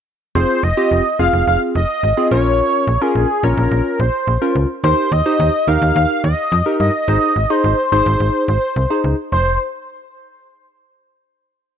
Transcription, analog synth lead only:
0.35 0.65 C5 loud
0.63 1.19 D#5 loud
1.19 1.45 F5 loud
1.48 1.60 F5 loud
1.76 2.28 D#5 loud
2.32 3.03 C#5 loud
3.01 3.45 G#4 medium
3.44 4.01 A#4 loud
4.00 4.56 C5 medium
4.84 5.13 C5 loud
5.12 5.70 D#5 loud
5.68 5.95 F5 loud
5.96 6.22 F5 loud
6.24 6.76 D#5 loud
6.80 7.52 D#5 loud
7.50 7.92 C5 medium
7.92 8.44 C5 medium
8.48 9.00 C5 medium
9.32 9.58 C5 medium

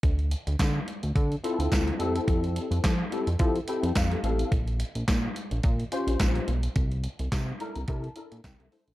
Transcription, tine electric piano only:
1.43 1.99 C4 loud
1.43 1.99 E4 medium
1.43 2.00 F4 medium
1.43 1.99 A4 loud
2.00 2.90 C4 medium
2.00 2.90 E4 medium
2.00 2.90 G4 medium
2.00 2.90 A4 medium
3.11 3.28 C4 medium
3.11 3.28 E4 medium
3.11 3.28 G4 medium
3.11 3.28 A4 loud
3.40 3.56 C4 medium
3.40 3.56 E4 medium
3.40 3.56 G4 medium
3.40 3.56 A4 medium
3.68 3.90 C4 medium
3.68 3.90 E4 medium
3.68 3.90 G4 medium
3.68 3.91 A4 loud
3.68 3.94 G5 medium
3.96 4.22 F5 medium
4.11 4.18 G4 loud
4.11 4.18 A4 loud
4.24 4.52 C4 medium
4.24 4.52 E4 medium
4.24 4.52 G4 medium
4.24 4.52 A4 medium
4.24 4.50 F5 medium
5.92 6.50 C#4 loud
5.92 6.50 F4 loud
5.92 6.50 G4 medium
5.92 6.50 C5 loud
7.60 7.76 D4 medium
7.60 7.76 E4 medium
7.60 7.77 A4 medium
7.60 7.77 A#4 loud
7.60 7.86 A#5 medium
7.88 8.04 D4 medium
7.88 8.04 E4 medium
7.88 8.04 A4 medium
7.88 8.04 A#4 medium
7.88 8.40 A5 medium
8.16 8.38 D4 medium
8.16 8.39 E4 medium
8.16 8.39 A4 medium
8.16 8.39 A#4 medium
8.44 8.59 G5 medium
8.59 8.66 A4 medium
8.59 8.66 A#4 loud
8.59 8.94 E5 medium
8.71 8.94 D4 medium
8.71 8.94 E4 medium
8.71 8.94 A4 medium
8.71 8.94 C5 medium

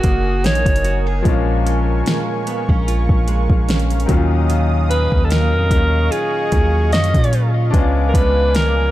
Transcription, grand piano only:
0.00 1.20 D#3 medium
0.00 1.21 G#3 medium
0.00 1.22 A#3 medium
0.00 1.23 C#4 medium
0.00 1.24 F#4 medium
1.22 4.04 F3 medium
1.22 4.05 G#3 medium
1.26 4.06 A#3 medium
1.26 4.07 C#4 medium
1.26 4.08 F4 medium
4.06 7.30 A#2 medium
4.06 7.28 D#3 medium
4.06 7.29 F#3 medium
4.12 7.31 C#4 medium
4.12 7.32 F4 medium
7.71 8.91 G#3 medium
7.71 8.91 B3 medium
7.71 8.91 D4 medium
7.76 8.91 C#4 medium
7.76 8.91 F4 medium

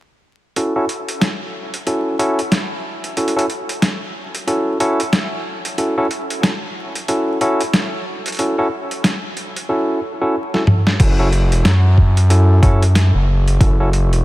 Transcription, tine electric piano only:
0.56 0.73 C#4 medium
0.56 0.73 E4 medium
0.56 0.73 F#4 medium
0.56 0.73 A4 medium
0.76 0.84 C#4 medium
0.76 0.84 E4 medium
0.76 0.84 F#4 medium
0.76 0.84 A4 medium
1.87 2.16 C#4 medium
1.87 2.16 E4 medium
1.87 2.16 F#4 medium
1.87 2.16 A4 medium
2.19 2.39 C#4 medium
2.19 2.39 E4 medium
2.19 2.39 F#4 medium
2.19 2.39 A4 medium
3.17 3.34 C#4 medium
3.17 3.34 E4 medium
3.17 3.34 F#4 medium
3.17 3.34 A4 medium
3.36 3.45 C#4 medium
3.36 3.45 E4 medium
3.36 3.45 F#4 medium
3.36 3.45 A4 medium
4.47 4.77 C#4 medium
4.47 4.77 E4 medium
4.47 4.77 F#4 medium
4.47 4.77 A4 medium
4.80 5.00 C#4 medium
4.80 5.00 E4 medium
4.80 5.00 F#4 medium
4.80 5.00 A4 medium
5.78 5.95 C#4 medium
5.78 5.95 E4 medium
5.78 5.95 F#4 medium
5.78 5.95 A4 medium
5.98 6.06 C#4 medium
5.98 6.06 E4 medium
5.98 6.06 F#4 medium
5.98 6.06 A4 medium
7.08 7.38 C#4 medium
7.08 7.38 E4 medium
7.08 7.38 F#4 medium
7.08 7.38 A4 medium
7.41 7.61 C#4 medium
7.41 7.61 E4 medium
7.41 7.61 F#4 medium
7.41 7.61 A4 loud
8.39 8.56 C#4 medium
8.39 8.56 E4 medium
8.39 8.56 F#4 medium
8.39 8.56 A4 medium
8.58 8.67 C#4 medium
8.58 8.67 E4 medium
8.58 8.67 F#4 medium
8.58 8.67 A4 medium
9.69 9.99 C#4 medium
9.69 9.99 E4 medium
9.69 9.99 F#4 medium
9.69 9.99 A4 medium
10.21 10.35 C#4 medium
10.21 10.35 E4 medium
10.21 10.35 F#4 medium
10.21 10.35 A4 medium
10.54 10.62 C#4 medium
10.54 10.62 E4 medium
10.54 10.62 F#4 medium
10.54 10.62 A4 medium
11.00 11.16 C#4 medium
11.00 11.16 E4 medium
11.00 11.16 F#4 medium
11.00 11.16 A4 medium
11.19 11.27 C#4 medium
11.19 11.27 E4 medium
11.19 11.27 F#4 medium
11.19 11.27 A4 medium
12.30 12.60 C#4 medium
12.30 12.60 E4 medium
12.30 12.60 F#4 medium
12.30 12.60 A4 medium
12.62 12.82 C#4 medium
12.62 12.82 E4 medium
12.62 12.82 F#4 medium
12.62 12.82 A4 loud
13.60 13.77 C#4 medium
13.60 13.77 E4 medium
13.60 13.77 F#4 medium
13.60 13.77 A4 medium
13.80 13.88 C#4 medium
13.80 13.88 E4 medium
13.80 13.88 F#4 medium
13.80 13.88 A4 medium

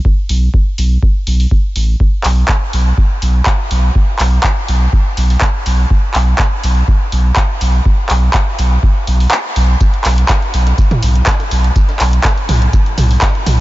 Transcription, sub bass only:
0.29 0.49 B1 medium
0.78 0.97 B1 loud
1.27 1.46 B1 medium
1.76 1.95 A1 medium
2.24 2.44 B1 loud
2.73 2.93 B1 medium
3.22 3.41 B1 loud
3.71 3.90 B1 medium
4.20 4.39 B1 loud
4.68 4.88 B1 medium
5.17 5.36 B1 loud
5.66 5.85 B1 medium
6.15 6.34 B1 medium
6.64 6.83 B1 loud
7.12 7.32 B1 loud
7.61 7.80 B1 medium
8.10 8.29 B1 loud
8.59 8.78 B1 loud
9.07 9.27 B1 loud
9.56 9.75 B1 medium
10.05 10.24 B1 loud
10.54 10.73 B1 loud
11.03 11.22 B1 loud
11.51 11.71 B1 medium
12.00 12.19 B1 loud
12.49 12.68 B1 loud
12.98 13.17 B1 loud
13.46 13.60 B1 medium

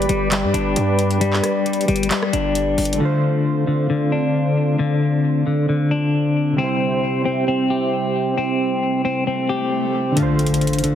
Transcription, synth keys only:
0.00 2.93 G3 medium
0.00 2.95 G4 medium
0.00 2.97 B4 medium
0.00 2.99 D5 medium
2.94 6.51 D3 medium
2.94 6.53 A3 medium
3.01 6.55 F4 medium
3.01 6.57 C5 medium
6.53 10.10 C3 medium
6.53 10.12 G3 medium
6.60 10.13 E4 medium
6.60 10.15 C5 medium
10.12 10.95 D3 medium
10.12 10.95 A3 medium
10.19 10.95 F4 medium
10.19 10.95 C5 medium

